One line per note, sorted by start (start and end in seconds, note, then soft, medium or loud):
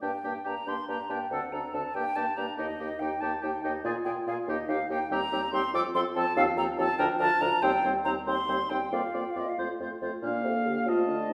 0.01 0.12 G2 medium
0.01 0.11 A#3 medium
0.01 0.12 D4 soft
0.01 0.12 G4 medium
0.01 0.48 G5 medium
0.24 0.34 G2 soft
0.24 0.33 A#3 soft
0.24 0.34 D4 soft
0.24 0.34 G4 soft
0.44 0.55 G2 medium
0.44 0.55 A#3 soft
0.44 0.55 D4 soft
0.44 0.54 G4 soft
0.44 0.70 A#5 medium
0.66 0.76 G2 soft
0.66 0.76 A#3 soft
0.66 0.77 D4 soft
0.66 0.77 G4 soft
0.66 0.88 C6 medium
0.88 0.98 G2 soft
0.88 0.98 A#3 soft
0.88 0.98 D4 soft
0.88 0.98 G4 soft
0.88 1.12 A#5 medium
1.09 1.19 G2 medium
1.09 1.19 A#3 soft
1.09 1.19 D4 soft
1.09 1.20 G4 soft
1.09 1.31 G5 medium
1.31 1.40 D2 medium
1.31 1.41 C4 medium
1.31 1.41 D4 soft
1.31 1.42 A4 medium
1.31 1.54 F#5 medium
1.52 1.62 D2 medium
1.52 1.62 C4 soft
1.52 1.62 D4 soft
1.52 1.62 A4 soft
1.52 1.75 A#5 medium
1.73 1.83 D2 medium
1.73 1.83 C4 soft
1.73 1.83 D4 soft
1.73 1.83 A4 soft
1.73 1.96 A5 medium
1.94 2.04 G2 medium
1.94 2.05 A#3 medium
1.94 2.05 D4 medium
1.94 2.05 G4 medium
1.94 2.17 G5 medium
2.16 2.26 G2 soft
2.16 2.26 A#3 soft
2.16 2.26 D4 medium
2.16 2.26 G4 soft
2.16 2.38 A5 medium
2.37 2.47 G2 medium
2.37 2.46 A#3 medium
2.37 2.47 D4 soft
2.37 2.46 G4 soft
2.37 2.57 A#5 medium
2.57 2.68 D#2 medium
2.57 2.67 A#3 medium
2.57 2.68 D#4 medium
2.57 2.67 G4 medium
2.57 3.01 D#5 medium
2.79 2.89 D#2 medium
2.79 2.89 A#3 soft
2.79 2.89 D#4 soft
2.79 2.89 G4 soft
2.99 3.10 D#2 medium
2.99 3.10 A#3 soft
2.99 3.10 D#4 medium
2.99 3.10 G4 soft
2.99 3.22 G5 medium
3.21 3.31 D#2 medium
3.21 3.31 A#3 medium
3.21 3.31 D#4 soft
3.21 3.32 G4 medium
3.21 3.44 A5 medium
3.42 3.52 D#2 medium
3.42 3.52 A#3 medium
3.42 3.53 D#4 medium
3.42 3.52 G4 soft
3.42 3.63 G5 medium
3.64 3.73 D#2 medium
3.64 3.73 A#3 medium
3.64 3.73 D#4 medium
3.64 3.73 G4 soft
3.64 3.84 D#5 medium
3.84 3.94 A#2 medium
3.84 3.94 A#3 medium
3.84 3.94 F4 medium
3.84 3.95 G#4 medium
3.84 3.91 D5 medium
4.04 4.15 A#2 medium
4.04 4.15 A#3 soft
4.04 4.15 F4 medium
4.04 4.15 G#4 medium
4.04 4.10 G5 medium
4.27 4.36 A#2 medium
4.27 4.37 A#3 medium
4.27 4.36 F4 soft
4.27 4.37 G#4 medium
4.27 4.33 F5 medium
4.47 4.57 D#2 medium
4.47 4.57 A#3 medium
4.47 4.57 D#4 medium
4.47 4.58 G4 medium
4.47 4.70 D#5 medium
4.68 4.78 D#2 medium
4.68 4.78 A#3 medium
4.68 4.78 D#4 medium
4.68 4.78 G4 medium
4.68 4.90 F5 medium
4.89 4.99 D#2 medium
4.89 4.99 A#3 medium
4.89 4.99 D#4 medium
4.89 5.00 G4 medium
4.89 5.11 G5 medium
5.10 5.20 D#2 medium
5.10 5.20 G3 medium
5.10 5.20 C4 medium
5.10 5.21 G4 medium
5.10 5.52 A#5 loud
5.32 5.41 D#2 medium
5.32 5.41 G3 medium
5.32 5.41 C4 medium
5.32 5.42 G4 medium
5.52 5.62 D#2 medium
5.52 5.62 G3 medium
5.52 5.63 C4 medium
5.52 5.64 G4 medium
5.52 5.73 C6 medium
5.73 5.83 F2 medium
5.73 5.83 F3 medium
5.73 5.84 C4 medium
5.73 5.84 A4 medium
5.73 5.80 D6 loud
5.95 6.04 F2 medium
5.95 6.04 F3 medium
5.95 6.04 C4 medium
5.95 6.04 A4 medium
5.95 6.01 C6 loud
6.15 6.25 F2 medium
6.15 6.25 F3 medium
6.15 6.25 C4 medium
6.15 6.25 A4 medium
6.15 6.35 A5 loud
6.36 6.46 D#2 medium
6.36 6.46 F3 medium
6.36 6.46 C4 medium
6.36 6.46 A4 medium
6.36 6.42 F5 loud
6.57 6.66 D#2 medium
6.57 6.67 F3 medium
6.57 6.67 C4 medium
6.57 6.67 A4 medium
6.57 6.63 A#5 loud
6.77 6.87 D#2 medium
6.77 6.88 F3 medium
6.77 6.88 C4 medium
6.77 6.88 A4 medium
6.77 6.97 A5 medium
6.98 7.08 D2 medium
6.98 7.09 F3 medium
6.98 7.08 D4 medium
6.98 7.08 A#4 medium
6.98 7.04 G5 loud
7.19 7.29 D2 medium
7.19 7.30 F3 medium
7.19 7.30 D4 medium
7.19 7.29 A#4 medium
7.19 7.43 A5 loud
7.41 7.50 D2 medium
7.41 7.51 F3 medium
7.41 7.50 D4 medium
7.41 7.51 A#4 medium
7.41 7.64 A#5 loud
7.62 7.72 D#2 medium
7.62 7.72 G3 medium
7.62 7.73 C4 medium
7.62 7.72 C5 medium
7.62 7.86 G5 loud
7.83 7.94 D#2 medium
7.83 7.93 G3 medium
7.83 7.94 C4 medium
7.83 7.93 C5 medium
8.05 8.15 D#2 medium
8.05 8.15 G3 medium
8.05 8.15 C4 medium
8.05 8.14 C5 medium
8.05 8.11 A#5 medium
8.27 8.36 D#2 medium
8.27 8.37 G3 medium
8.27 8.37 C4 medium
8.27 8.36 C5 medium
8.27 8.71 C6 medium
8.48 8.58 D#2 medium
8.48 8.58 G3 medium
8.48 8.58 C4 medium
8.48 8.59 C5 medium
8.70 8.80 D#2 medium
8.70 8.80 G3 medium
8.70 8.80 C4 medium
8.70 8.80 C5 soft
8.70 8.94 G5 medium
8.92 9.02 F2 medium
8.92 9.02 A#3 medium
8.92 9.02 F4 medium
8.92 9.03 D5 medium
8.92 9.23 F5 medium
9.14 9.24 F2 medium
9.14 9.24 A#3 soft
9.14 9.24 F4 medium
9.14 9.24 D5 soft
9.21 9.32 G5 medium
9.31 9.41 F5 medium
9.36 9.46 F2 medium
9.36 9.46 A#3 soft
9.36 9.46 F4 medium
9.36 9.46 D5 soft
9.36 9.51 D#5 medium
9.49 9.58 F5 medium
9.58 9.68 F2 medium
9.58 9.67 A3 medium
9.58 9.68 F4 medium
9.58 9.68 C5 medium
9.80 9.89 F2 medium
9.80 9.90 A3 medium
9.80 9.90 F4 medium
9.80 9.91 C5 soft
10.02 10.11 F2 medium
10.02 10.12 A3 soft
10.02 10.12 F4 soft
10.02 10.12 C5 soft
10.23 10.43 A#2 medium
10.23 10.89 A#3 soft
10.23 10.43 D4 medium
10.23 10.90 F5 medium
10.44 10.54 C3 medium
10.44 10.68 A4 medium
10.66 10.88 D3 medium
10.66 10.88 G4 medium
10.87 11.10 C3 medium
10.87 11.33 A3 soft
10.87 11.07 F4 medium
10.87 11.33 D#5 medium
10.87 11.33 A5 medium
11.08 11.29 D3 medium
11.08 11.31 D4 medium
11.29 11.33 C3 medium
11.29 11.33 D#4 medium